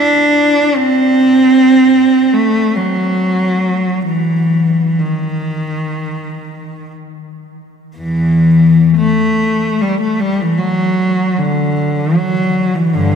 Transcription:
0.00 D4
0.76 C4
2.33 A3
2.76 F#3
4.06 E3
4.99 D#3
7.97 E2 E3
8.96 A3
9.81 G3
10.01 A3
10.20 G3
10.42 E3
10.58 F#3
11.38 D3
12.16 F#3
12.75 E3
12.94 G2 D3

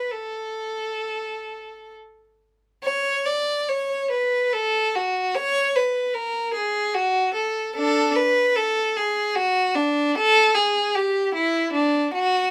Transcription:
Already playing: B4
0.12 A4
2.84 C#5
3.26 D5
3.69 C#5
4.11 B4
4.53 A4
4.95 F#4
5.35 C#5
5.76 B4
6.14 A#4
6.53 G#4
6.94 F#4
7.34 A4
7.76 D4 A4
8.16 B4
8.56 A4
8.97 G#4
9.35 F#4
9.75 D4
10.15 A4
10.55 G#4
10.95 G4
11.34 E4
11.72 D4
12.14 F#4

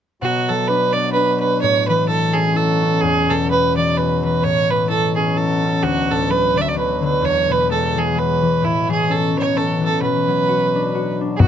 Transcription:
0.22 B2 F#3 F#4
0.49 F#3 A4
0.68 D4 B4
0.92 B3 D5
1.12 B4
1.16 D4
1.40 B3 B4
1.61 A2 C#5
1.88 E3 B4
2.08 E4 A4
2.33 C#4 G#4
2.55 E4 A4
2.82 C#4
3.01 E2 G#4
3.29 B2 A4
3.50 G#3 B4
3.77 E3 D5
3.97 G#3 B4
4.23 E3 B4
4.43 A2 C#5
4.70 E3 B4
4.89 E4 A4
5.16 C#4 G#4
5.36 E4 A4
5.64 C#4
5.83 D2 B2 F#3 F#4
6.10 A2 A4
6.29 F#3 B4
6.55 D3 D5
6.61 E5
6.68 D5
6.75 F#3 B4
7.02 D3 B4
7.21 E2 C#5
7.49 B2 B4
7.69 G#3 A4
7.95 E3 G#4
8.15 G#3 B4
8.42 E3
8.62 A2 E4
8.88 E3 G#4
9.09 C#4 A4
9.36 E3 C#5
9.55 C#4 A4
9.81 E3 A4
10.01 B2 B4
10.28 F#3
10.48 F#4
10.75 D4
10.95 F#4
11.21 D4
11.36 F#4 G#4, bodhran
11.40 B2 F#3

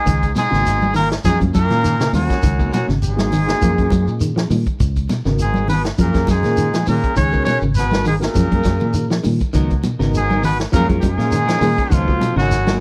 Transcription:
Already playing: G#2 G#3 G#4
0.06 C#2 D#3, kick, closed hi-hat, high conga, shekere
0.23 kick, closed hi-hat, shekere
0.36 G#2 B2 G#3 G#4, snare, closed hi-hat, high conga, shekere
0.50 G#1 C#3 A#3 B3 D#4 F#4, snare, shekere
0.66 snare, closed hi-hat, high conga, shekere
0.82 high conga, shekere
0.94 A#2 D#3 A#3 A#4, open hi-hat, low conga, shekere
1.11 snare, closed hi-hat, shekere
1.24 F#2 G#2 F3 G#3 A#3 C#4 F4 G#4, kick, snare, closed hi-hat, high conga, shekere
1.28 G#3
1.39 F#2 G#3 A#3 C#4 F4, kick, closed hi-hat, high conga, shekere
1.54 F#2 A#2 F#3 A#4, kick, closed hi-hat, high conga, shekere
1.59 A#3
1.70 A#2 G#3 A#3 C#4 F4, snare, closed hi-hat, low conga, shekere
1.84 D#3, closed hi-hat, shekere
2.00 C#3, snare, closed hi-hat, shekere
2.13 D#2 F#2 D#3 G#3 A#3 C#4 F4 F#4, open hi-hat, high conga, low conga, shekere
2.18 F#3
2.29 kick, snare, closed hi-hat, shekere
2.43 C#2 D#3, kick, closed hi-hat, high conga, shekere
2.59 A#3 B3 D#4 F#4, kick, shekere
2.73 F#2 B2 F#3 F#4, snare, closed hi-hat, high conga, shekere
2.89 G#1 C#3, snare, shekere
3.02 G#2 G#4, closed hi-hat, high conga, shekere
3.08 G#3
3.16 A#3 B3 D#4 F#4, snare, closed hi-hat, high conga, shekere
3.32 D#3, open hi-hat, low conga, shekere
3.46 A#3 B3 D#4 F#4, snare, closed hi-hat, shekere
3.61 F#2 F3 A#3 C#4 F4 G#4, kick, closed hi-hat, high conga, shekere
3.78 F#2, kick, closed hi-hat, shekere
3.90 F#2 F#3, kick, closed hi-hat, high conga, shekere
4.07 A#2, shekere
4.21 D#3, closed hi-hat, shekere
4.36 F3, snare, closed hi-hat, shekere
4.50 A#2 D#3, open hi-hat, high conga, low conga, shekere
4.66 kick, closed hi-hat, shekere
4.80 C#2, muted clean electric guitar stroke, kick, closed hi-hat, high conga, shekere
4.96 kick, closed hi-hat, shekere
5.09 B2, snare, closed hi-hat, high conga, shekere
5.25 G#1 C#3 B3 D#4 F#4 A#4, snare, shekere
5.39 G#2 G#4, closed hi-hat, high conga, shekere
5.44 G#3
5.54 high conga, shekere
5.68 D#3 B4, open hi-hat, low conga, shekere
5.73 B2 B3
5.84 snare, closed hi-hat, shekere
5.98 F#2 A#2 F3 C#4 F4 G#4 A#4, kick, closed hi-hat, high conga, shekere
6.03 A#3
6.13 F#2 C#4 F4 G#4 A#4, kick, snare, closed hi-hat, shekere
6.27 F#2 G#2 F#3 G#4, kick, snare, closed hi-hat, high conga, shekere
6.31 G#3
6.43 A#2 C#4 F4 G#4 A#4, snare, closed hi-hat, low conga, shekere
6.57 D#3, closed hi-hat, shekere
6.73 F3, snare, closed hi-hat, shekere
6.86 A#2 D#3 A#3 C#4 F4 G#4 A#4, open hi-hat, high conga, low conga, shekere
7.03 kick, closed hi-hat, shekere
7.16 C#2 C#3 D#3 C#4 C#5, kick, closed hi-hat, high conga, shekere
7.32 B3 D#4 F#4 A#4, kick, shekere
7.45 B2 C#3 C#5, snare, closed hi-hat, high conga, shekere
7.49 C#4
7.61 G#1 C#3, shekere
7.75 B2 B3 B4, snare, closed hi-hat, high conga, shekere
7.91 B3 D#4 F#4 A#4, snare, closed hi-hat, high conga, shekere
8.05 D#3 G#3 G#4, open hi-hat, low conga, shekere
8.09 G#2
8.20 A#3 B3 D#4 F#4 A#4, snare, closed hi-hat, shekere
8.24 A#2
8.34 F#2 F3 C#4 F4 G#4 A#4, kick, closed hi-hat, high conga, shekere
8.51 F#2, kick, closed hi-hat, high conga, shekere
8.64 F#2 F#3, kick, snare, closed hi-hat, high conga, shekere
8.80 A#2, low conga, shekere
8.94 D#3, closed hi-hat, shekere
9.10 F3, snare, closed hi-hat, shekere
9.24 A#2 D#3, open hi-hat, high conga, low conga, shekere
9.40 kick, closed hi-hat, shekere
9.53 C#2 D#3 F#3 B3 D#4 A#4, kick, closed hi-hat, high conga, shekere
9.70 kick, closed hi-hat, shekere
9.84 B2, closed hi-hat, high conga, shekere
9.99 G#1 C#3 B3 D#4 F#4 A#4, snare, shekere
10.14 G#2 G#3 G#4, closed hi-hat, high conga, shekere
10.29 B3 D#4 A#4, high conga, shekere
10.43 B2 D#3 B3 B4, open hi-hat, low conga, shekere
10.60 snare, closed hi-hat, shekere
10.72 F#2 A#2 F3 G#3 A#3 C#4 F4 G#4 A#4, kick, closed hi-hat, high conga, shekere
10.89 F#2 A#3 C#4 F4 G#4 A#4, kick, closed hi-hat, high conga, shekere
11.01 F#2 G#2 F#3 G#3 G#4, kick, closed hi-hat, high conga, shekere
11.18 A#2 A#3 C#4 F4 G#4 A#4, snare, closed hi-hat, shekere
11.32 D#3, closed hi-hat, shekere
11.47 F3 C#4 F4 A#4, snare, closed hi-hat, shekere
11.60 A#2 D#3 A#3 C#4 F4 G#4, open hi-hat, high conga, low conga, shekere
11.77 kick, closed hi-hat, shekere
11.90 C#2 D#3 F3 F#3 B3 D#4 F4, muted clean electric guitar stroke, kick, closed hi-hat, high conga, shekere
11.96 F2
12.07 A#3 B3 D#4 F#4, kick, shekere
12.21 B2, closed hi-hat, high conga, shekere
12.36 G#1 C#3 F#3 D#4 F#4 A#4, snare, shekere
12.40 F#2
12.51 snare, closed hi-hat, high conga, shekere
12.66 A#3 B3 D#4 F#4 A#4, snare, closed hi-hat, high conga, shekere

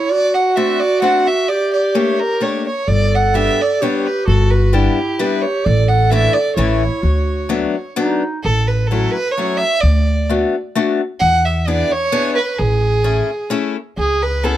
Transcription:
Already playing: E4 C#5
0.09 F#4 D5
0.34 F#5
0.56 A3 C4 D4 F#4 E5
0.80 D5
1.01 A3 C4 D4 F#4 F#5
1.27 E5
1.48 G4 D5
1.73 D5
1.95 A3 A#3 D4 G4 C#5
2.20 A#4
2.40 A3 A#3 D4 G4 C#5
2.67 C#5
2.87 G1 A4 D5
3.15 F#5
3.34 G3 B3 D4 G4 E5
3.62 D5
3.80 G3 B3 D4 G4 C#5
4.06 B4
4.26 G1 F#4 A4
4.51 B4
4.73 G3 B3 D4 E4 G4
5.19 G3 B3 D4 E4 G4 B4
5.42 C#5
5.64 A1 A4 D5
5.88 F#5
6.11 E3 A3 D4 E4 E5
6.34 D5
6.56 A1 E3 A3 C#4 E4 C#5
7.02 D2 F#4
7.49 F#3 A3 B3 D4
7.96 F#3 A3 B3 D4 D#4
8.43 A1 A4
8.67 B4
8.87 F#3 A4
8.92 A3 C#4 E4
9.11 B4
9.32 C#5
9.38 F#3 A3 C#4 E4
9.58 E5
9.80 D2 D5
10.29 A3 B3 D4 F#4
10.75 A3 B3 D4 F#4
11.20 E2 F#5
11.45 E5
11.67 B3 D4 E4 G#4 D5
11.92 C#5
12.12 B3 D4 E4 G#4
12.36 B4
12.58 A1 G#4
13.04 A3 C#4 E4 G#4
13.50 A3 C#4 E4 G#4
13.97 C#2 G#4
14.23 B4
14.43 B3 C#4 E4 G#4 A4

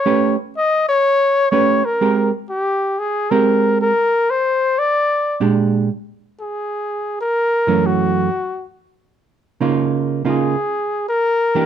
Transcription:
Already playing: C#5
0.06 A3 C#4 G4 B4
0.56 D#5
0.89 C#5
1.51 A3 C#4 G4 B4 C#5
1.85 A#4
2.01 G#3 C4 G4 A#4
2.49 G4
2.99 G#4
3.31 G#3 C4 G4 A#4
3.81 A#4
4.30 C5
4.79 D5
5.40 A#2 G#3 D4 G4
6.40 G#4
7.20 A#4
7.67 F#2 E3 A3 C#4
7.86 F#4
9.61 C#3 A#3 D#4 F4
10.25 C#3 A#3 D#4 F4
10.29 G#4
11.08 A#4
11.55 E3 A#3 D4 G4

